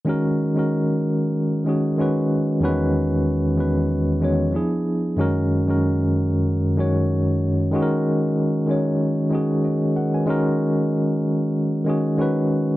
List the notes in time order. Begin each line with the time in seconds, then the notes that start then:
0.05 D#3 G#3 C#4 F#4
0.09 A#4
0.54 D#3 G#3 C#4 F#4
0.59 A#4
1.65 D#3 G#3 C#4 F#4
1.69 G#4
1.97 D#3 G#3 C#4 F#4
2.01 B4
2.60 E2 D#3 G3 C#4 F#4
2.65 G#3 B4
3.56 E2 D#3 G#3 C#4 F#4
3.60 B4
4.20 E2 D#3 G#3 C#4 F#4
4.24 C#5
4.51 F3 B3 D4 E4
4.56 G#4
5.16 F#2 D#3 G#3 C#4 F#4
5.21 A#4
5.66 F#2 D#3 G#3 C#4 F#4
5.70 A#4
6.76 F#2 D#3 G#3 C#4 F#4
6.80 C#5
7.72 D#3 G#3 C#4 F#4
7.76 G#4
7.82 A#4
8.66 D#3 G#3 C#4 F#4
8.71 C#5
9.30 D#3 G#3 C#4 F#4
9.35 G#4
9.64 F#4 D#5
9.96 A#4 F#5
10.14 B4 G#5
10.26 D#3 G#3 C#4 F#4
10.30 A#4
11.85 D#3 G#3 C#4 F#4
11.90 G#4
12.17 D#3 G#3 C#4 F#4
12.22 B4